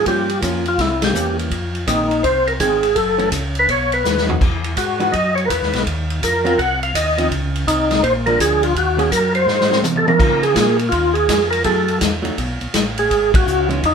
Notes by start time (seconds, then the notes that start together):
0.06 G2 F3 A#3 C#4 G4, kick, ride
0.29 ride
0.42 F2 F3 A#3 C#4, kick, hi-hat pedal, ride
0.66 F4, ride
0.78 C2 E4, kick, snare, ride
1.02 G4, snare, ride
1.13 E2 E3 A#3 C#4, hi-hat pedal
1.39 ride
1.50 F2, kick, ride
1.75 ride
1.87 A#1 D#3 G#3 C4 D#4, kick, hi-hat pedal, ride
2.11 ride
2.23 C2 C5, kick, ride
2.47 A#4, ride
2.59 G#1 D#3 G#3 C4 G#4, kick, hi-hat pedal, ride
2.83 ride
2.95 F#1 A4, kick, ride
3.18 E3 A3 C#4, ride
3.31 C#2, kick, hi-hat pedal, ride
3.55 ride
3.59 B4
3.69 B1 C#5, kick, ride
3.92 B4, ride
4.04 D#2, snare, hi-hat pedal
4.18 snare
4.27 E3 G#3 D#4 F#4, floor tom
4.41 E2, kick, crash
4.64 ride
4.77 G#2 F#4, kick, hi-hat pedal, ride
5.00 E3 G#3 D#4 F#4, ride
5.12 F#2 D#5, kick, ride
5.35 C#5, ride
5.45 A#4 B4
5.50 E2, kick, hi-hat pedal, ride
5.61 D#2, snare
5.73 B1, snare, ride
5.86 D#2, kick, ride
6.10 ride
6.22 F2 A#4, kick, hi-hat pedal, ride
6.45 F#3 C4 F4, ride
6.58 C2 F#5, kick, ride
6.83 F5, ride
6.94 D#2 D#5, kick, hi-hat pedal, ride
7.18 F3 C4 D#4, ride
7.31 C#2, kick, ride
7.56 ride
7.67 C2 D#4, kick, hi-hat pedal, ride
7.91 snare, ride
8.02 A#1 C5, kick, ride
8.26 F3 G#3 D4 A#4, ride
8.39 D2 G#4, kick, hi-hat pedal, ride
8.63 F4, ride
8.75 D#2 F#4, kick, ride
8.97 D#3 A#3 C#4 F#4 G#4, ride
9.11 F#2 A#4, kick, hi-hat pedal, ride
9.35 C5, ride
9.46 G#2, snare
9.61 snare
9.70 F#3 C4 D#4, snare
9.82 C3, hi-hat pedal, high tom
9.96 A4, high tom
10.06 C3 A#4, high tom
10.19 C#3 F3 A#3 D#4, kick, crash
10.43 G#4, ride
10.54 A#2 F3 A#3 D#4, kick, snare, hi-hat pedal, ride
10.79 ride
10.89 D#2 F4, kick, ride
11.13 G#4, ride
11.28 F2, kick, snare, hi-hat pedal, ride
11.51 A#4, ride
11.64 F#2 F#3 A3 E4 G#4 A4, kick, ride
11.88 ride
12.01 E2, kick, snare, hi-hat pedal, ride
12.22 E2 F#3 A3 D#4, ride
12.37 B1, kick, ride
12.61 B1, ride
12.74 A1, kick, snare, hi-hat pedal, ride
12.98 G#4, ride
13.11 G#1, kick, ride
13.34 F#4, kick, ride
13.46 C#2, hi-hat pedal
13.68 E3 G#3 C#4 D#4, ride
13.83 E2 D#4, kick, ride